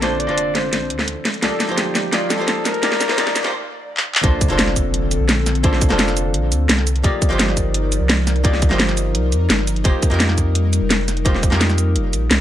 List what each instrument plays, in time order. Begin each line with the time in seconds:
Already playing: sub bass A#1, analog synth pad D3 C4 A4, riser
0.01 hollow-body jazz guitar A#3 D4 F4 A4 C5, flugelhorn C5, snare, closed hi-hat
0.20 flugelhorn D5, closed hi-hat
0.27 sub bass F1, hollow-body jazz guitar A#3 D4 F4 A4 C5, closed hi-hat
0.38 closed hi-hat
0.55 flugelhorn C5, snare, closed hi-hat
0.73 sub bass A#1, snare, closed hi-hat
0.90 sub bass D2, closed hi-hat
0.99 snare
1.08 sub bass D2, closed hi-hat
1.25 analog synth pad F3 A#3 D#4 D5, snare, closed hi-hat
1.34 closed hi-hat
1.42 sub bass C2, hollow-body jazz guitar A#3 D#4 F4 G4 D5, flugelhorn A4, snare, closed hi-hat
1.60 snare, closed hi-hat, shaker
1.67 sub bass G1, hollow-body jazz guitar A#3 D#4 F4 G4 C5, closed hi-hat
1.78 flugelhorn G4, snare, closed hi-hat, shaker
1.95 snare, closed hi-hat, shaker
2.12 hollow-body jazz guitar A#3 D#4 F4 G4 D5, flugelhorn F4, snare, closed hi-hat
2.30 flugelhorn A4, snare, closed hi-hat, shaker
2.38 sub bass C2, hollow-body jazz guitar A#3 D#4 F4 G4 C5
2.48 snare, closed hi-hat, shaker
2.65 flugelhorn A#4, snare, closed hi-hat, shaker
2.74 closed hi-hat
2.83 hollow-body jazz guitar A#3 D#4 F4 G4 D5, snare, closed hi-hat
2.92 snare
3.00 snare, closed hi-hat, shaker
3.08 sub bass G1, hollow-body jazz guitar A#3 D#4 F4 C5, snare, closed hi-hat
3.17 hollow-body jazz guitar A#3 D#4 F4 G4 D5, snare, closed hi-hat, shaker
3.27 snare
3.36 snare, closed hi-hat, shaker
3.43 hollow-body jazz guitar A#3 D#4 F4 G4 C5, snare
3.97 clap
4.15 clap
4.23 sub bass A#1, analog synth pad D3 C4 A4, hollow-body jazz guitar A#3 D4 F4 A4 C5, kick, closed hi-hat, impact
4.41 kick, closed hi-hat, shaker
4.48 sub bass F1, hollow-body jazz guitar A#3 D4 F4 A4 C5, closed hi-hat
4.59 snare, closed hi-hat, shaker
4.67 snare
4.76 kick, closed hi-hat, shaker
4.94 closed hi-hat
5.11 closed hi-hat, shaker
5.20 sub bass A#1
5.29 snare, closed hi-hat, shaker
5.46 snare, closed hi-hat, shaker
5.55 closed hi-hat
5.63 hollow-body jazz guitar A#3 D4 F4 A4 C5, kick, closed hi-hat
5.73 snare
5.81 kick, closed hi-hat, shaker
5.89 sub bass F1, hollow-body jazz guitar A#3 D4 F4 A4 C5, snare, closed hi-hat
5.99 snare, closed hi-hat, shaker
6.08 snare, shaker
6.17 closed hi-hat, shaker
6.34 sub bass A#1, closed hi-hat
6.52 sub bass D2, closed hi-hat, shaker
6.69 sub bass C2, snare, closed hi-hat, shaker
6.78 snare
6.87 analog synth pad F3 D#4 A#4 D5, closed hi-hat, shaker
6.96 closed hi-hat
7.03 sub bass C2, hollow-body jazz guitar A#3 D#4 F4 G4 D5, kick, closed hi-hat
7.22 kick, closed hi-hat, shaker
7.29 sub bass G1, hollow-body jazz guitar A#3 D#4 F4 G4 C5, closed hi-hat
7.39 snare, closed hi-hat, shaker
7.48 snare
7.57 kick, closed hi-hat, shaker
7.74 closed hi-hat
7.92 closed hi-hat, shaker
8.01 sub bass C2
8.09 snare, closed hi-hat, shaker
8.27 snare, closed hi-hat, shaker
8.36 closed hi-hat
8.44 hollow-body jazz guitar A#3 D#4 F4 G4 D5, kick, closed hi-hat
8.53 snare
8.62 kick, closed hi-hat, shaker
8.69 sub bass G1, hollow-body jazz guitar A#3 D#4 F4 G4 C5, snare, closed hi-hat
8.80 snare, closed hi-hat, shaker
8.88 snare, shaker
8.97 closed hi-hat, shaker
9.15 sub bass C2, closed hi-hat
9.32 sub bass F2, closed hi-hat, shaker
9.50 sub bass G1, snare, closed hi-hat, shaker
9.59 snare
9.67 closed hi-hat, shaker
9.76 closed hi-hat
9.84 sub bass F1, analog synth pad G3, hollow-body jazz guitar A#3 D#4 F4 G4 C5, kick, closed hi-hat
10.02 kick, closed hi-hat, shaker
10.10 sub bass F2, hollow-body jazz guitar A#3 D#4 F4 G4 A#4, closed hi-hat
10.20 snare, closed hi-hat, shaker
10.29 snare
10.38 kick, closed hi-hat, shaker
10.55 closed hi-hat
10.73 closed hi-hat, shaker
10.82 sub bass F1
10.90 snare, closed hi-hat, shaker
11.08 snare, closed hi-hat, shaker
11.17 closed hi-hat
11.25 hollow-body jazz guitar A#3 D#4 F4 G4 C5, kick, closed hi-hat
11.34 snare
11.43 kick, closed hi-hat, shaker
11.50 sub bass F2, hollow-body jazz guitar A#3 D#4 F4 G4 A#4, snare, closed hi-hat
11.61 snare, closed hi-hat, shaker
11.70 snare, shaker
11.78 closed hi-hat, shaker
11.96 sub bass F1, closed hi-hat
12.13 sub bass A#1, closed hi-hat, shaker
12.31 sub bass C2, snare, closed hi-hat, shaker